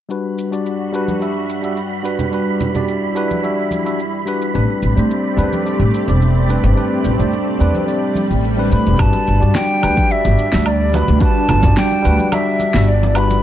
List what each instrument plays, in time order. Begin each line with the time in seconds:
0.09 tine electric piano G3 D4 F#4 B4, analog synth pad G3 F#4, synth texture B5, shaker
0.38 shaker
0.51 tine electric piano G3 D4 F#4 D5, shaker
0.66 shaker
0.92 tine electric piano G3 D4 F#4 B4, shaker
1.08 high conga, shaker
1.20 tine electric piano G3 D4 F#4 E5, shaker
1.49 shaker
1.62 tine electric piano G3 D4 F#4 E5, shaker
1.77 shaker
2.03 tine electric piano G3 D4 F#4 B4, shaker
2.19 low conga, shaker
2.31 tine electric piano G3 D4 F#4 B4, analog synth pad E4, shaker
2.60 low conga, shaker
2.74 tine electric piano G3 D4 F#4 D5, low conga, shaker
2.88 shaker
3.15 tine electric piano G3 D4 F#4 B4, shaker
3.31 high conga, shaker
3.42 tine electric piano G3 D4 F#4 E5, shaker
3.71 high conga, shaker
3.84 tine electric piano G3 D4 F#4 E5, shaker
4.00 shaker
4.26 tine electric piano G3 D4 F#4 B4, shaker
4.42 shaker
4.53 upright bass A1, tine electric piano G3 C4 D4 B4, analog synth pad A3 C4 G4 D5, shaker
4.82 upright bass A1, shaker
4.96 upright bass A2, tine electric piano G3 C4 D4 C5, shaker
5.11 shaker
5.36 upright bass E2, tine electric piano G3 C4 D4 B4, shaker
5.53 high conga, shaker
5.65 tine electric piano G3 C4 D4 D5, shaker
5.80 upright bass A1
5.94 shaker
6.07 upright bass E1, tine electric piano G3 C4 D4 D5, shaker
6.22 shaker
6.48 tine electric piano G3 C4 D4 B4, shaker
6.64 upright bass G1, low conga, shaker
6.75 tine electric piano G3 C4 D4 B4, shaker
7.04 upright bass A1, low conga, shaker
7.18 upright bass A2, tine electric piano G3 C4 D4 C5, low conga, shaker
7.33 shaker
7.59 upright bass E2, tine electric piano G3 C4 D4 B4, shaker
7.75 high conga, shaker
7.86 tine electric piano G3 C4 D4 D5, swell, shaker
8.15 high conga, shaker
8.31 upright bass A1, shaker
8.44 shaker
8.57 tine electric piano G3 C4 D4 B4
8.71 upright bass A2, tine electric piano G3 C4 D4 B4, flute B5, shaker
8.86 upright bass E1, shaker
8.98 upright bass G1, tine electric piano G3 D4 F#4 B4, analog synth pad G3 D4, flute A5, kick, low woodblock, shaker
9.13 muted conga
9.27 upright bass G1, shaker
9.40 upright bass G2, tine electric piano G3 D4 F#4 D5, shaker
9.55 flute G5, snare, muted conga, shaker
9.82 upright bass D2, tine electric piano G3 D4 F#4 B4, muted conga, low woodblock, shaker
9.97 kick, high conga, shaker
10.09 tine electric piano G3 D4 F#4 E5, flute E5, shaker
10.25 upright bass G1, muted conga
10.39 shaker
10.52 upright bass D2, tine electric piano G3 D4 F#4 E5, snare, muted conga, shaker
10.66 flute D5, low woodblock, shaker
10.92 tine electric piano G3 D4 F#4 B4, flute B5, muted conga, shaker
11.08 upright bass D2, low conga, shaker
11.19 tine electric piano G3 D4 F#4 B4, flute A5, kick, muted conga, shaker
11.48 upright bass G1, low conga, low woodblock, shaker
11.63 upright bass G2, tine electric piano G3 D4 F#4 D5, kick, muted conga, low conga, shaker
11.77 flute G5, snare, shaker
11.91 muted conga
12.03 upright bass D2, tine electric piano G3 D4 F#4 B4, shaker
12.18 high conga, shaker
12.31 tine electric piano G3 D4 F#4 E5, flute E5, muted conga, low woodblock, shaker
12.60 muted conga, shaker
12.74 upright bass G1, tine electric piano G3 D4 F#4 E5, snare, shaker
12.88 flute D5, shaker
13.03 muted conga
13.14 tine electric piano G3 D4 F#4 B4, flute B5, low woodblock, shaker
13.30 muted conga, shaker